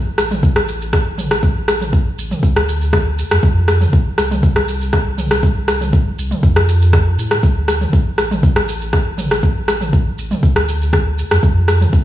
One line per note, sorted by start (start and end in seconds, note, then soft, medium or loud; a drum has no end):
0.18 2.11 A1 medium
0.18 cross-stick medium
0.18 shaker medium
0.31 mid tom medium
0.31 shaker medium
0.43 kick loud
0.43 shaker soft
0.56 cross-stick medium
0.69 shaker medium
0.82 shaker soft
0.93 kick loud
0.93 cross-stick medium
0.93 shaker soft
1.18 mid tom medium
1.18 shaker medium
1.31 cross-stick medium
1.31 shaker medium
1.43 kick loud
1.43 shaker soft
1.68 cross-stick medium
1.68 shaker medium
1.81 mid tom medium
1.81 shaker soft
1.93 kick loud
1.93 shaker soft
2.18 2.34 A1 loud
2.18 shaker medium
2.31 mid tom medium
2.31 shaker medium
2.43 3.23 D2 loud
2.43 kick loud
2.43 shaker soft
2.56 cross-stick medium
2.69 shaker medium
2.82 shaker medium
2.93 kick loud
2.93 cross-stick medium
2.93 shaker soft
3.19 shaker medium
3.31 3.38 F2 loud
3.31 cross-stick loud
3.31 shaker medium
3.43 3.86 F2 loud
3.43 kick loud
3.43 shaker soft
3.68 cross-stick medium
3.68 shaker medium
3.81 mid tom medium
3.81 shaker medium
3.93 kick loud
3.93 shaker soft
4.18 6.11 C2 medium
4.18 cross-stick medium
4.18 shaker medium
4.31 mid tom medium
4.31 shaker medium
4.43 kick loud
4.43 shaker soft
4.56 cross-stick medium
4.68 shaker medium
4.82 shaker medium
4.93 kick loud
4.93 cross-stick medium
4.93 shaker soft
5.18 mid tom medium
5.18 shaker medium
5.31 cross-stick medium
5.31 shaker medium
5.43 kick loud
5.43 shaker soft
5.68 cross-stick medium
5.68 shaker medium
5.81 mid tom medium
5.81 shaker medium
5.93 kick loud
5.93 shaker soft
6.18 6.34 C2 medium
6.18 shaker medium
6.31 mid tom medium
6.31 shaker medium
6.43 7.17 F2 loud
6.43 kick loud
6.43 shaker soft
6.56 cross-stick medium
6.69 shaker medium
6.82 shaker medium
6.93 kick loud
6.93 cross-stick medium
6.93 shaker soft
7.18 7.34 A2 medium
7.18 shaker medium
7.31 cross-stick medium
7.31 shaker medium
7.43 7.86 D2 loud
7.43 kick loud
7.43 shaker soft
7.68 cross-stick medium
7.68 shaker medium
7.81 mid tom medium
7.81 shaker soft
7.93 kick loud
7.93 shaker soft
8.18 10.11 A1 medium
8.18 cross-stick medium
8.18 shaker medium
8.31 mid tom medium
8.31 shaker soft
8.43 kick loud
8.43 shaker soft
8.56 cross-stick medium
8.69 shaker medium
8.82 shaker medium
8.93 kick loud
8.93 cross-stick medium
8.93 shaker soft
9.18 mid tom medium
9.18 shaker medium
9.31 cross-stick medium
9.31 shaker medium
9.43 kick loud
9.43 shaker soft
9.68 cross-stick medium
9.68 shaker medium
9.81 mid tom medium
9.81 shaker soft
9.93 kick loud
9.93 shaker soft
10.18 10.34 A1 medium
10.18 shaker medium
10.31 mid tom medium
10.31 shaker medium
10.43 11.23 D2 loud
10.43 kick loud
10.43 shaker soft
10.56 cross-stick medium
10.69 shaker medium
10.82 shaker medium
10.93 kick loud
10.93 cross-stick medium
10.93 shaker soft
11.19 shaker medium
11.31 11.38 F2 loud
11.31 cross-stick medium
11.31 shaker medium
11.43 11.86 F2 loud
11.43 kick loud
11.43 shaker soft
11.68 cross-stick medium
11.68 shaker medium
11.81 mid tom medium
11.81 shaker soft
11.93 kick loud
11.93 shaker soft